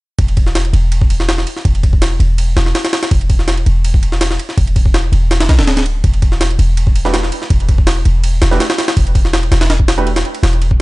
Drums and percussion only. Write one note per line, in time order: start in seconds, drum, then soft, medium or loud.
0.19 kick loud
0.19 ride medium
0.28 ride soft
0.37 kick medium
0.37 ride medium
0.47 snare soft
0.55 snare loud
0.55 ride medium
0.65 ride soft
0.74 ride medium
0.92 ride medium
1.02 kick medium
1.10 ride medium
1.20 snare medium
1.29 snare loud
1.29 ride medium
1.38 snare medium
1.47 ride medium
1.57 snare soft
1.65 kick loud
1.65 ride medium
1.75 ride soft
1.83 kick medium
1.83 ride medium
1.93 kick medium
2.02 snare loud
2.02 ride medium
2.20 ride medium
2.38 ride medium
2.57 snare loud
2.57 ride medium
2.66 snare medium
2.75 snare loud
2.75 ride medium
2.85 snare loud
2.85 ride medium
2.93 snare loud
2.93 ride medium
3.03 snare medium
3.03 ride medium
3.11 kick loud
3.11 ride medium
3.21 ride soft
3.30 kick medium
3.30 ride medium
3.39 snare soft
3.48 snare loud
3.48 ride medium
3.57 ride soft
3.66 ride medium
3.85 ride medium
3.94 kick medium
4.03 ride medium
4.12 snare medium
4.21 snare loud
4.21 ride medium
4.31 snare medium
4.39 ride medium
4.49 snare soft
4.58 kick loud
4.58 ride medium
4.67 ride soft
4.76 kick medium
4.76 ride medium
4.86 kick medium
4.94 snare loud
4.94 ride medium
5.13 ride medium
5.31 snare loud
5.31 ride medium
5.40 snare loud
5.40 ride medium
5.49 snare loud
5.49 ride medium
5.59 snare loud
5.59 ride medium
5.67 snare loud
5.67 ride medium
5.77 snare loud
5.77 ride medium
5.86 ride medium
6.04 kick loud
6.04 ride medium
6.14 ride soft
6.22 kick medium
6.22 ride medium
6.32 snare soft
6.41 snare loud
6.41 ride medium
6.50 ride soft
6.59 ride medium
6.77 ride medium
6.87 kick medium
6.96 ride medium
7.05 snare medium
7.14 snare loud
7.14 ride medium
7.23 snare medium
7.32 ride medium
7.42 snare soft
7.50 kick loud
7.50 ride medium
7.60 ride soft
7.69 kick medium
7.69 ride medium
7.78 kick medium
7.87 snare loud
7.87 ride medium
8.05 ride medium
8.24 ride medium
8.42 snare loud
8.42 ride medium
8.52 snare medium
8.60 snare loud
8.60 ride medium
8.70 snare loud
8.70 ride medium
8.78 snare loud
8.78 ride medium
8.88 snare loud
8.88 ride medium
8.97 kick loud
8.97 ride medium
9.07 ride soft
9.15 kick medium
9.15 ride medium
9.25 snare soft
9.33 snare loud
9.33 ride medium
9.43 ride soft
9.52 snare loud
9.52 ride medium
9.61 snare loud
9.61 ride medium
9.70 snare loud
9.70 ride medium
9.80 kick medium
9.88 snare loud
9.88 ride medium
9.98 ride soft
10.07 ride medium
10.16 snare loud
10.16 ride medium
10.25 ride soft
10.35 ride medium
10.43 snare loud
10.43 ride medium
10.53 ride soft
10.62 ride medium
10.71 kick medium